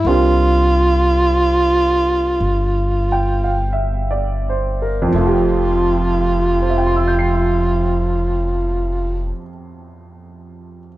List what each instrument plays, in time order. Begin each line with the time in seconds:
0.05 upright bass C2, upright piano A#3 C4 D4 F4 G4, tenor saxophone F4
2.40 upright bass G1
3.12 upright piano G5
3.44 upright piano F5
3.73 upright piano E5
4.11 upright piano D5
4.49 upright piano C5
4.82 upright piano A#4
5.02 upright piano F2
5.08 upright piano F3
5.12 upright bass F1, upright piano A3, tenor saxophone F4
5.21 upright piano F4
5.27 upright piano G4
6.62 upright piano C5
6.69 upright piano E5
6.78 upright piano G5
6.87 upright piano C6
6.96 upright piano E6
7.08 upright piano G6
7.19 upright piano C7